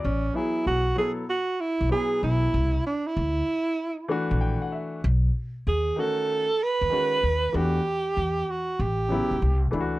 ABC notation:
X:1
M:4/4
L:1/16
Q:"Swing 16ths" 1/4=96
K:A
V:1 name="Alto saxophone"
C2 E2 F2 G2 F2 E2 G2 E2- | E2 D E8 z4 z | z4 G2 A4 B6 | =G6 F2 G6 z2 |]
V:2 name="Grand piano"
d z12 z3 | z12 =g f e2 | z16 | z16 |]
V:3 name="Grand piano"
z2 [F,B,EG]2 z2 [F,B,EA]2 z4 [F,B,EG]4 | z8 z2 [E,A,DF]6 | z6 [^D,A,CF]2 z4 [D,G,CF]2 z2 | [E,A,DF]2 z8 [C,F,B,E]2 z2 [E,A,DEF]2 |]
V:4 name="Upright bass" clef=bass
A,,,2 z2 B,,,2 z4 z B,,, z2 B,,,2 | =C,,2 z2 D,,2 z4 z _B,,,2 z3 | B,,,2 z2 ^D,,2 z4 z D,, z2 D,,2 | E,,2 z2 E,,2 z2 A,,,3 C,, =C,,2 ^C,,2 |]